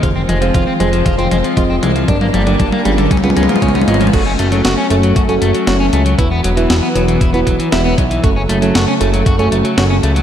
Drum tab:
CC |--------------------------------|--------------------------------|x-------------------------------|--------------------------------|
HH |x---x-x-x---x-x-x-x-x-x-x---x-x-|x---x-x-x---x-x-x-x-x-x-x-x-x-x-|x---x-x-x---x-x-x-x-x-x-x---x-x-|x---x-x-x---x-x-x-x-x-x-x---x-x-|
SD |--------------------------------|--------------------------------|--------o---------------o-------|--------o---------------o-------|
T2 |o---o---o---o---o---o---o---o---|o-o-o-o-o-o-o-o-oooooooooooooooo|--------------------------------|--------------------------------|
BD |o-------o-------o-------o-------|o-------o-------o-------o-------|o---------------o---------------|o---------------o---o-------o---|

CC |--------------------------------|
HH |x---x-x-x---x-x-x-x-x-x-x---x-x-|
SD |--------o---------------o-------|
T2 |--------------------------------|
BD |o---------------o---------------|